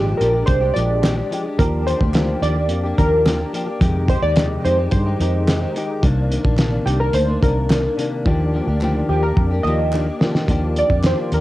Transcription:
Already playing: G#1 A#2 F3 G#3 D4 G4
0.17 A#1 F3 G#3 D4 A#4, closed hi-hat
0.22 G4
0.34 G#3 D4 G4
0.46 C2 C5, kick, closed hi-hat
0.61 G#3 D4 G4
0.74 A#1 F3 G#3 D4 G4 D5, closed hi-hat
1.03 A#2 F3 G#3 D4 G4, snare, clap, closed hi-hat
1.17 G#3 D4 G4
1.31 F3 G#3 D4 G4, closed hi-hat
1.45 G#3 D4 G4
1.59 D#2 D#3 F3 A#3 D4 G4 A#4, kick, closed hi-hat
1.86 F3 A#3 D4 G4 C5, closed hi-hat
2.00 D2 A#3 D4 G4, kick
2.14 D#3 F3 A#3 D4 G4, snare, clap, closed hi-hat
2.42 D#2 F3 A#3 D4 G4 D5, closed hi-hat
2.56 A#3 D4 G4
2.69 F2, closed hi-hat
2.84 A#3 D4 G4
2.97 D#2 F3 A#3 D4 G4 A#4, kick, closed hi-hat
3.26 D#3 F3 A#3 D4 G4, snare, clap, closed hi-hat
3.39 A#3 D4 G4
3.53 F3 A#3 D4 G4, closed hi-hat
3.66 A#3 D4 G4
3.81 F2 C3 D#3 G#3 D#4 G4, kick, closed hi-hat
4.08 D#3 G#3 D#4 G4 C5, kick, closed hi-hat
4.22 D#2 D#3 G#3 D#4 G4 D5
4.36 F2 C3 D#3 G#3 D#4 G4, snare, clap, closed hi-hat
4.64 F2 D#3 G#3 D#4 G4 C5, closed hi-hat
4.78 D#3 G#3 D#4 G4
4.91 G2 C5, kick, closed hi-hat
5.06 D#3 G#3 D#4 G4
5.19 F2 D#3 G#3 D#4 G4, closed hi-hat
5.47 F2 C3 D#3 G#3 D#4 G4, snare, clap, closed hi-hat
5.61 D#3 G#3 D#4 G4
5.75 D#3 G#3 D#4 G4, closed hi-hat
6.03 C2 C3 D#3 A#3 D4, kick, closed hi-hat
6.31 C3 D#3 A#3 D4, closed hi-hat
6.44 A#1 D#3 A#3 D4, kick
6.58 C3 D#3 A#3 D4, snare, clap, closed hi-hat
6.86 C2 C3 D#3 A#3 D4 G4, closed hi-hat
7.00 D#3 A#3 D4 A#4
7.13 D2 C5, closed hi-hat
7.28 D#3 A#3 D4
7.42 C2 C3 D#3 A#3 D4 A#4, kick, closed hi-hat
7.70 C3 D#3 A#3 D4, snare, clap, closed hi-hat
7.84 D#3 A#3 D4
7.97 C3 D#3 A#3 D4, closed hi-hat
8.25 D#2 D#3 F3 A#3 D4 G4, kick
8.53 F3 A#3 D4 G4
8.67 D2 A#3 D4 G4
8.81 D#3 F3 A#3 D4 G4, clap
9.09 D#2 F3 A#3 D4 G4
9.23 A#3 D4 G4 A#4
9.37 F2, kick
9.51 A#3 D4 G4
9.63 D#2 F3 A#3 D4 D#5, clap
9.68 G4
9.93 D#3 F3 A#3 D4 G4, clap
10.07 A#3 D4 G4
10.21 F3 A#3 D4 G4, snare
10.35 snare
10.48 D#2 D#3 F3 A#3 D4 G4, kick, closed hi-hat
10.76 D5, closed hi-hat
10.90 F2 A#3 D4 G4, kick
11.03 D#3 F3 A#3 D4 G4 C5, snare, clap, closed hi-hat
11.32 D#2 A#4, closed hi-hat

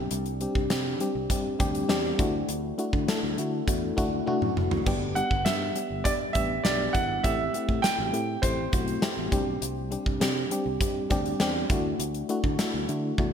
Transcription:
Already playing: G3 C4 D4 G4
0.11 C2, closed hi-hat
0.26 closed hi-hat
0.41 G3 C4 D4 G4, closed hi-hat
0.55 C2, kick
0.70 C3 G3 C4 D4 G4, snare, closed hi-hat
1.00 G3 C4 D4 G4, closed hi-hat
1.15 C2
1.30 G3 C4 D4 G4, kick, closed hi-hat
1.59 D2 G3 C4 D4 G4, kick, closed hi-hat
1.75 closed hi-hat
1.89 E2 G3 C4 D4 G4, snare, closed hi-hat
2.18 D2 A3 D4 E4 F#4, kick, closed hi-hat
2.49 D2, closed hi-hat
2.78 A3 D4 E4 F#4, closed hi-hat
2.93 D3, kick
3.08 A3 D4 E4 A4, snare, closed hi-hat
3.23 D2
3.38 D3 A3 D4 E4 F#4, closed hi-hat
3.67 E2 A3 D4 E4 F#4, kick, closed hi-hat
3.97 D2 A3 D4 E4 F#4, kick, closed hi-hat
4.26 A3 D4 E4 F#4, high tom
4.41 F#2, mid tom
4.56 F1 A3 D4 E4 F#4, mid tom
4.71 F#1, floor tom
4.86 G1 G3 B3 D4 G4, kick, splash
5.15 G3 B3 D4 G4 F#5, closed hi-hat
5.31 G1, kick
5.45 G2 G3 B3 D4 G4 E5, snare, closed hi-hat
5.75 G3 B3 D4 G4, closed hi-hat
5.90 G1
6.04 G3 B3 D4 G4 D5, kick, closed hi-hat
6.33 A1 G3 B3 D4 G4 E5, kick, closed hi-hat
6.64 B1 G3 B3 D4 G4 D5, snare, closed hi-hat
6.93 G#1 G3 B3 D4 E4 F#5, kick, closed hi-hat
7.24 A1 A3 C4 E4 G4 E5, kick, closed hi-hat
7.54 A3 C4 E4 G4, closed hi-hat
7.69 A2, kick
7.82 A3 C4 E4 G4 G5, snare, closed hi-hat
7.98 A1
8.13 A2 A3 C4 E4 G4, closed hi-hat
8.42 A1 A3 C4 E4 G4 C5, kick, closed hi-hat
8.72 B1 A3 C4 E4 F#4, kick, closed hi-hat
8.88 closed hi-hat
9.02 A3 C4 E4 G4, snare, closed hi-hat
9.17 A1
9.32 C2 G3 C4 D4 G4, kick, closed hi-hat
9.47 B1
9.62 C2, closed hi-hat
9.91 G3 C4 D4 G4, closed hi-hat
10.06 C2, kick
10.20 C3 G3 C4 D4 G4, snare, closed hi-hat
10.51 G3 C4 D4 G4, closed hi-hat
10.66 C2
10.80 G3 C4 D4 G4, kick, closed hi-hat
11.10 D2 G3 C4 D4 G4, kick, closed hi-hat
11.26 closed hi-hat
11.40 E2 G3 C4 D4 G4, snare, closed hi-hat
11.70 D2 A3 D4 E4 F#4, kick, closed hi-hat
11.99 D2, closed hi-hat
12.14 closed hi-hat
12.29 A3 D4 E4 F#4, closed hi-hat
12.44 D3, kick
12.58 A3 D4 E4 F#4, snare, closed hi-hat
12.74 D2
12.88 D3 A3 D4 E4 F#4, closed hi-hat
13.18 E2 A3 D4 E4 F#4, kick, high tom

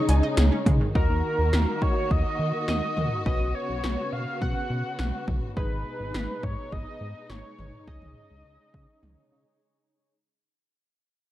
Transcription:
Already playing: C#3 G#3 D#4 G#4 C#5 D#5
0.09 C#2 G#5, closed hi-hat, cowbell
0.23 D#5
0.37 C#2 G#4, snare, closed hi-hat
0.52 C#4
0.66 C#3 G#3, kick, closed hi-hat, mid tom
0.81 D#3
0.95 D#2 D#3 A#3 D#4 F#4 A#4, kick
1.10 D#2
1.38 D#2
1.53 D#2, snare
1.82 D#3 C#5, kick
2.11 D#2 D#5, kick
2.39 D#3
2.68 D#2 D#5, snare
2.97 D#2, mid tom
3.26 B1 C#3 B3 C#4 F#4 B4 D#5, kick
3.40 B1
3.55 C#5
3.69 B1
3.84 B1, snare
4.12 B2 F5
4.41 B1 F#5, kick
4.70 B2
4.99 B1, snare
5.28 B1, kick, mid tom
5.57 G#1 B2 G#3 D#4 G#4 B4, kick
5.71 G#1
6.00 G#1
6.14 G#1, snare
6.43 G#2 C#5, kick
6.72 G#1 D#5, kick
7.01 G#2
7.30 G#1 C#5, snare
7.59 G#1, mid tom
7.87 C#2 C#3 D#4 G#4 C#5 D#5, kick
8.02 C#2, mid tom
8.31 C#2
8.45 C#2
8.74 C#3, kick
9.03 C#2, mid tom
9.32 C#3

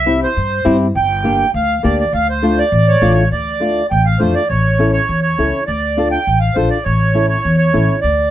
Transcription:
Already playing: C2 E5
0.06 C4 E4 G4
0.23 C5
0.37 G2
0.65 G2 C4 E4 G4
0.95 G1 G5
1.24 A#3 D4 G4
1.54 D2 F5
1.83 D2 A#3 D4 G4 D5
1.99 D5
2.13 D2 F5
2.30 C5
2.42 A3 D4 F4
2.59 D5
2.72 A1
2.88 C#5
3.02 A1 A3 D4 F4
3.31 D2 D5
3.60 A3 D4 F4
3.91 A1 G5
4.06 F5
4.19 F2 A3 D4 F4 C5
4.35 D5
4.49 A1 C#5
4.79 C#4 E4 A4
4.93 C#5
5.09 E2
5.22 C#5
5.38 C#2 C#4 E4 A4
5.67 D2 D5
5.97 D4 F4 A4
6.11 G5
6.27 A1
6.40 F5
6.55 A#1 D4 F4 A4 C5
6.70 D5
6.84 A1 C#5
7.14 C#4 E4 A4
7.29 C#5
7.45 E2
7.58 C#5
7.73 A1 C#4 E4 A4
8.01 D2 D5

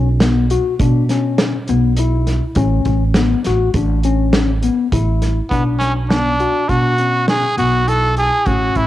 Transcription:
Already playing: B1
0.20 B3, snare, closed hi-hat
0.50 F#4, closed hi-hat
0.79 B2 D4, kick, closed hi-hat
1.09 C#4, snare, closed hi-hat
1.38 snare, closed hi-hat
1.68 B1 B3, closed hi-hat
1.97 E4, closed hi-hat
2.27 snare, closed hi-hat
2.55 A1 C#4, kick, closed hi-hat
2.85 A1, kick, closed hi-hat
3.14 B3, snare, closed hi-hat
3.44 A1 F#4, snare, closed hi-hat
3.74 A1 D4, kick, closed hi-hat
4.03 C#4, closed hi-hat
4.33 snare, closed hi-hat
4.63 B3, closed hi-hat
4.92 A1 E4, kick, closed hi-hat
5.22 snare, closed hi-hat
5.50 B1 B3 D4, kick, closed hi-hat
5.79 C#4, snare, closed hi-hat
6.09 B3 D4, snare, closed hi-hat
6.40 F#4, closed hi-hat
6.69 B2 D4 F#4, kick, closed hi-hat
6.98 C#4, closed hi-hat
7.28 G#4, snare, closed hi-hat
7.57 B1 B3 F#4, closed hi-hat
7.88 E4 A4, closed hi-hat
8.17 G#4, closed hi-hat
8.46 A1 C#4 F#4, kick, closed hi-hat
8.75 A1 E4, kick, closed hi-hat

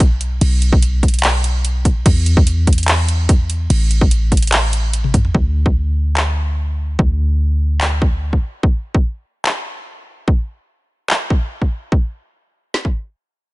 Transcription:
Already playing: B1
0.00 kick, closed hi-hat
0.21 closed hi-hat
0.41 B1, closed hi-hat, crash
0.62 closed hi-hat
0.72 kick
0.82 closed hi-hat
1.03 kick, closed hi-hat
1.08 closed hi-hat
1.14 closed hi-hat
1.19 closed hi-hat
1.24 clap, closed hi-hat, crash
1.44 closed hi-hat
1.65 closed hi-hat
1.85 kick, closed hi-hat
2.06 E2, kick, closed hi-hat, crash
2.26 closed hi-hat
2.37 kick
2.47 closed hi-hat
2.67 kick, closed hi-hat
2.73 closed hi-hat
2.78 closed hi-hat
2.83 closed hi-hat
2.88 clap, closed hi-hat, crash
3.08 closed hi-hat
3.29 kick, closed hi-hat
3.50 closed hi-hat
3.70 A1, closed hi-hat, crash
3.91 closed hi-hat
4.01 kick
4.11 closed hi-hat
4.32 kick, closed hi-hat
4.37 closed hi-hat
4.42 closed hi-hat
4.47 closed hi-hat
4.52 clap, closed hi-hat, crash
4.73 closed hi-hat
4.93 closed hi-hat
5.04 high tom
5.14 kick, closed hi-hat, mid tom
5.25 mid tom
5.35 D2, kick
5.66 kick
6.17 finger snap, clap
6.99 D2, kick
7.81 finger snap, clap
8.02 kick
8.33 kick
8.63 kick
8.95 kick
9.45 finger snap, clap
10.28 kick
11.10 finger snap, clap
11.30 kick
11.62 kick
11.92 kick
12.74 snare
12.85 kick

